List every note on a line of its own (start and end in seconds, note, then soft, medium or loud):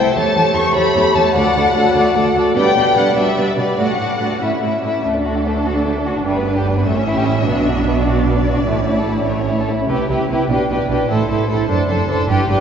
0.00 0.15 A3 soft
0.00 0.16 E4 soft
0.00 0.15 A4 soft
0.00 0.16 C5 soft
0.00 0.17 G5 medium
0.15 0.23 E2 medium
0.15 0.35 A3 soft
0.15 0.36 G4 soft
0.15 0.35 A4 medium
0.15 0.35 C#5 medium
0.15 0.55 A5 medium
0.35 0.43 E2 medium
0.35 0.56 A3 soft
0.35 0.55 G4 soft
0.35 0.54 A4 soft
0.35 0.54 C#5 soft
0.55 0.63 E2 medium
0.55 0.75 A3 soft
0.55 0.75 G4 medium
0.55 0.74 A4 soft
0.55 0.74 C#5 soft
0.55 0.76 C#6 medium
0.75 0.83 E2 medium
0.75 0.96 A3 soft
0.75 0.95 G4 soft
0.75 0.93 A4 soft
0.75 0.93 C#5 medium
0.75 1.15 B5 medium
0.95 1.03 E2 medium
0.95 1.16 A3 soft
0.95 1.16 G4 soft
0.95 1.14 A4 soft
0.95 1.14 C#5 soft
1.15 1.23 E2 medium
1.15 1.36 A3 soft
1.15 1.36 G4 soft
1.15 1.35 A4 soft
1.15 1.35 C#5 soft
1.15 1.36 A5 medium
1.35 1.44 D2 medium
1.35 1.56 A3 soft
1.35 1.55 F#4 soft
1.35 1.54 A4 medium
1.35 1.55 D5 medium
1.35 2.34 F#5 medium
1.55 1.63 D2 medium
1.55 1.75 A3 soft
1.55 1.74 F#4 soft
1.55 1.74 A4 soft
1.55 1.74 D5 soft
1.75 1.83 D2 soft
1.75 1.95 A3 medium
1.75 1.95 F#4 medium
1.75 1.94 A4 soft
1.75 1.94 D5 soft
1.95 2.03 D2 medium
1.95 2.15 A3 soft
1.95 2.15 F#4 soft
1.95 2.15 A4 medium
1.95 2.15 D5 soft
2.15 2.23 D2 medium
2.15 2.35 A3 soft
2.15 2.35 F#4 soft
2.15 2.35 A4 soft
2.15 2.36 D5 soft
2.35 2.43 D2 soft
2.35 2.56 A3 soft
2.35 2.56 F#4 soft
2.35 2.56 A4 soft
2.35 2.55 D5 soft
2.55 2.63 B2 medium
2.55 2.76 G3 soft
2.55 2.76 D4 soft
2.55 2.76 B4 soft
2.55 2.76 D5 soft
2.55 2.95 G5 medium
2.76 2.84 B2 soft
2.76 2.96 G3 soft
2.76 2.96 D4 soft
2.76 2.95 B4 soft
2.76 2.95 D5 soft
2.96 3.04 B2 soft
2.96 3.15 G3 soft
2.96 3.16 D4 soft
2.96 3.14 B4 soft
2.96 3.15 D5 soft
2.96 3.18 F#5 medium
3.16 3.25 B2 soft
3.16 3.36 G3 soft
3.16 3.36 D4 soft
3.16 3.36 B4 soft
3.16 3.36 D5 soft
3.16 3.57 E5 medium
3.37 3.46 B2 soft
3.37 3.56 G3 soft
3.37 3.56 D4 soft
3.37 3.56 B4 soft
3.37 3.57 D5 soft
3.57 3.66 B2 soft
3.57 3.78 G3 soft
3.57 3.77 D4 soft
3.57 3.78 B4 soft
3.57 3.77 D5 soft
3.57 3.79 D5 soft
3.78 3.87 A2 soft
3.78 3.98 A3 soft
3.78 3.98 D4 soft
3.78 3.98 F#4 soft
3.78 3.98 D5 soft
3.78 4.43 F#5 medium
3.99 4.07 A2 soft
3.99 4.19 A3 soft
3.99 4.19 D4 soft
3.99 4.18 F#4 soft
3.99 4.19 D5 soft
4.20 4.28 A2 soft
4.20 4.41 A3 soft
4.20 4.41 D4 soft
4.20 4.41 F#4 soft
4.20 4.41 D5 soft
4.41 4.50 A2 soft
4.41 4.60 A3 soft
4.41 4.61 C#4 soft
4.41 4.61 E4 soft
4.41 4.61 E5 soft
4.62 4.70 A2 soft
4.62 4.82 A3 soft
4.62 4.82 C#4 soft
4.62 4.83 E4 soft
4.62 4.83 E5 soft
4.83 4.92 A2 soft
4.83 5.04 A3 soft
4.83 5.04 C#4 soft
4.83 5.04 E4 soft
4.83 5.04 E5 soft
5.03 6.21 D2 soft
5.03 5.14 A3 soft
5.03 6.82 D4 soft
5.03 6.21 A4 soft
5.15 5.25 D4 soft
5.24 5.35 F#4 soft
5.35 5.45 D4 soft
5.46 5.55 A3 soft
5.55 5.65 D4 soft
5.65 5.75 F#4 soft
5.75 5.85 D4 soft
5.87 5.96 A3 soft
5.96 6.06 D4 soft
6.06 6.16 F#4 soft
6.16 6.26 D4 soft
6.24 6.84 G1 soft
6.24 6.84 G2 soft
6.24 6.34 G3 soft
6.24 6.86 B4 soft
6.36 6.46 B3 soft
6.47 6.56 D4 soft
6.55 6.65 G4 soft
6.66 6.76 D4 soft
6.77 6.86 B3 soft
6.85 7.45 A1 soft
6.85 7.45 A2 medium
6.85 6.95 A3 soft
6.85 7.45 C#4 medium
6.85 8.05 E5 soft
6.95 7.05 C#4 soft
7.05 7.15 E4 soft
7.14 7.25 G4 soft
7.24 7.35 E4 soft
7.36 7.46 C#4 soft
7.45 8.66 B1 medium
7.45 8.66 B2 medium
7.45 7.56 B3 medium
7.45 8.63 D4 soft
7.57 7.66 D4 soft
7.67 7.77 F#4 soft
7.77 7.86 D4 soft
7.86 7.96 B3 soft
7.99 8.07 D4 soft
8.05 8.17 F#4 soft
8.05 9.27 D5 soft
8.18 8.27 D4 soft
8.28 8.37 B3 soft
8.37 8.47 D4 soft
8.48 8.57 F#4 soft
8.57 8.67 D4 soft
8.66 9.66 A1 soft
8.66 9.66 A2 soft
8.66 8.76 A3 soft
8.66 9.69 E4 soft
8.77 8.87 C#4 soft
8.88 8.97 E4 soft
8.98 9.07 A4 soft
9.08 9.18 E4 soft
9.18 9.28 C#4 soft
9.27 9.38 A3 soft
9.27 9.69 C#5 soft
9.39 9.49 C#4 soft
9.49 9.58 E4 soft
9.59 9.69 A4 soft
9.69 9.79 E4 soft
9.80 9.90 C#4 soft
9.88 9.97 C2 soft
9.88 9.96 C3 soft
9.88 10.08 E4 soft
9.88 10.07 G4 soft
9.88 10.09 B4 soft
10.09 10.17 C2 soft
10.09 10.17 C3 soft
10.09 10.29 E4 soft
10.09 10.29 G4 soft
10.09 10.30 B4 soft
10.29 10.37 C2 soft
10.29 10.38 C3 soft
10.29 10.49 E4 soft
10.29 10.49 G4 soft
10.29 10.48 B4 soft
10.49 10.57 B1 soft
10.49 10.58 B2 soft
10.49 10.68 D4 soft
10.49 10.69 G4 soft
10.49 10.68 B4 soft
10.68 10.76 B1 soft
10.68 10.78 B2 soft
10.68 10.88 D4 soft
10.68 10.89 G4 soft
10.68 10.89 B4 soft
10.89 10.97 B1 soft
10.89 10.98 B2 soft
10.89 11.09 D4 soft
10.89 11.09 G4 soft
10.89 11.10 B4 soft
11.09 11.17 A1 medium
11.09 11.17 A2 medium
11.09 11.29 E4 soft
11.09 11.28 A4 soft
11.09 11.28 C5 soft
11.29 11.37 A1 soft
11.29 11.37 A2 medium
11.29 11.49 E4 soft
11.29 11.47 A4 soft
11.29 11.48 C5 soft
11.49 11.57 A1 soft
11.49 11.57 A2 soft
11.49 11.69 E4 soft
11.49 11.67 A4 soft
11.49 11.68 C5 soft
11.68 11.77 F#1 soft
11.68 11.77 F#2 medium
11.68 11.88 D4 soft
11.68 11.88 A4 soft
11.68 11.88 C5 soft
11.89 11.97 F#1 medium
11.89 11.97 F#2 medium
11.89 12.08 D4 soft
11.89 12.08 A4 soft
11.89 12.08 C5 soft
12.09 12.17 F#1 medium
12.09 12.17 F#2 medium
12.09 12.28 D4 soft
12.09 12.29 A4 medium
12.09 12.29 C5 soft
12.28 12.36 G1 medium
12.28 12.37 G2 medium
12.28 12.49 D4 medium
12.28 12.49 G4 medium
12.28 12.47 B4 medium
12.48 12.56 G1 medium
12.48 12.58 G2 medium
12.48 12.60 D4 medium
12.48 12.60 G4 soft
12.48 12.60 B4 medium